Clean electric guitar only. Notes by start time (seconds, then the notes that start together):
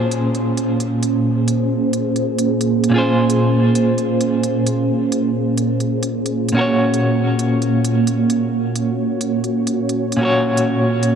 Already playing: A#2 F4 G#4 C5
2.90 A#2 C#4
2.94 F4 G#4
2.98 C5
6.52 A#2 C#4
6.57 F#4 A#4
6.61 C#5
10.17 A#2 C#4
10.21 F#4 A#4 C#5